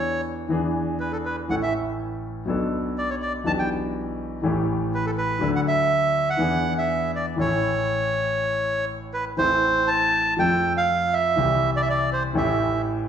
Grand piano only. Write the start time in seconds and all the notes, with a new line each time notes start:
Already playing: E2 E3 B3 D4 A4
0.48 E2 E3 B3 D4 G#4
1.48 A1 A2 E3 A3 C#4 A4
2.46 B1 B2 F#3 B3 D4
2.50 A4
3.44 B1 B2 E3 B3 D4 G4
4.42 A1 A2 E3 A3 C#4
4.46 G4
5.39 D2 D3 F#3 A3 D4
5.43 A4
6.39 E2 E3 B3 D4 G#4
7.36 A1 A2 E3 A3 C#4
7.40 A4
9.37 A1 A2 E3 A3 C4
9.41 A4
10.37 F2 F3 A3 C4 A4
11.36 C2 C3 E3 G3 C4
11.40 G4
12.33 A1 A2 E3 A3 C#4 G4